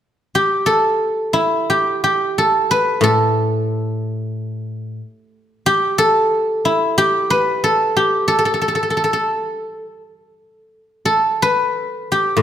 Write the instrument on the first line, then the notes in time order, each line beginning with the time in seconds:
guzheng
0.35 G4
0.66 A4
1.33 E4
1.70 G4
2.04 G4
2.38 A4
2.71 B4
3.01 A2 A4
5.66 G4
5.98 A4
6.65 E4
6.98 G4
7.30 B4
7.64 A4
7.97 G4
8.28 A4
8.39 A4
8.45 A4
8.54 A4
8.61 A4
8.68 A4
8.75 A4
8.83 A4
8.90 A4
8.97 A4
9.04 A4
9.13 A4
11.05 A4
11.42 B4
12.12 G4
12.37 A2